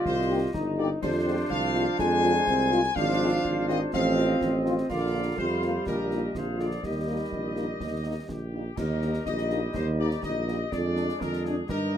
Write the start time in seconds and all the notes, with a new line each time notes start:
Already playing: F4 G4 D#5
0.06 C2 C3 C5, concert bass drum, snare
0.29 A#3 D#4 G4
0.54 G1 D#4, concert bass drum, snare
0.77 D3 A#3 D#4 G4 D5
1.02 F2 C3 D4 F4 C5, concert bass drum, snare, crash
1.27 G#3 C4 F4
1.50 C2 F3 F5, concert bass drum
1.75 G#3 C4 F4, snare
1.99 F2 G#3 G#5, concert bass drum, snare
2.23 G#3 C4 F4, snare
2.47 C2 C4, concert bass drum, snare
2.71 G#3 C4 F4, snare
2.84 snare
2.95 G#1 F3 D4 F4 C5 F5, concert bass drum, snare
3.20 G#3 C4 F4
3.45 G#1, concert bass drum
3.68 D#3 G#3 C4 F4 D#5, snare
3.93 A1 F3 C4 D#5 F5, concert bass drum, snare
4.17 F3 C4 F4, snare
4.41 A1, concert bass drum, snare
4.65 F3 C4 F4, snare
4.78 snare
4.89 A#1 D3 A#3 F4 D5 F5, concert bass drum, snare, crash
5.13 F3 A#3 F4
5.38 F2 C3 G3 C5, concert bass drum
5.62 F3 A#3 F4, snare
5.87 A#1 A#2 G4 A#4 D#5, concert bass drum, snare
6.10 G3 A#3 D#4, snare
6.35 A#1 C3 F3 G#4 C5 F5, concert bass drum, snare
6.58 D3 G#3 A#3 F4 D5, snare
6.71 snare
6.83 D#2 D#3 G3 G4 D#5, concert bass drum, snare
7.07 G3 A#3 D#4
7.32 A#1, concert bass drum
7.56 G3 A#3 D#4, snare
7.80 D#2, concert bass drum, snare
8.05 G3 A#3 D#4
8.29 A#1 G4, concert bass drum, snare
8.54 G3 A#3 D#4
8.77 D#2 G3 D#4 G4 A#4 D#5, concert bass drum, snare, crash
9.02 G3 A#3 D#4, snare
9.14 snare
9.25 A#1 G4 D#5, concert bass drum, snare
9.38 snare
9.50 G3 A#3 D#4, snare
9.74 D#2 C5, concert bass drum, snare
10.00 G3 A#3 D#4 D5
10.11 snare
10.23 A#1 G4 D#5, concert bass drum, snare
10.48 G3 A#3 D#4, snare
10.70 F2 G#3 D4 G#4 D5, concert bass drum, snare
10.96 G#3 D4, snare
11.09 snare
11.21 F2 A#4, concert bass drum, snare
11.33 snare
11.45 G#3 D4 G#4, snare
11.68 G2 G3 D#4 G4 A#4 D#5, concert bass drum, snare
11.93 G3 A#3 D#4